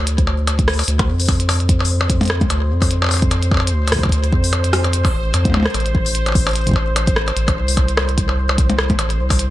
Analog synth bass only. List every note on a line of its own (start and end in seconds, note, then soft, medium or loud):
0.00 0.83 D2 loud
0.88 1.10 D2 loud
1.08 2.45 F2 medium
2.50 2.72 D2 loud
2.70 3.73 F2 loud
3.72 4.07 D2 loud
4.12 4.34 D2 loud
4.33 5.09 F2 loud
5.14 5.33 A1 loud
5.34 5.56 F2 loud
5.54 5.68 D2 medium
5.74 7.32 A1 loud
7.37 7.58 A1 loud
7.57 8.94 C2 loud
8.99 9.21 A1 loud
9.19 9.50 C2 medium